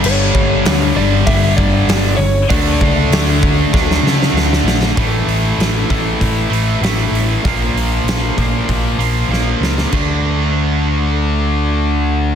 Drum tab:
CC |x---------------|----------------|----------------|----------------|
HH |----o---o---o---|o---o-----------|o-o-o-o-o-o-o-o-|o-o-o-o-o-o-----|
SD |----o-------o---|----o---oooooooo|----o-------o---|----o-------o-oo|
BD |--o-----o-o-----|o-o---o-o-------|o-----o-o-------|o-----o-o-------|

CC |x---------------|
HH |----------------|
SD |----------------|
BD |o---------------|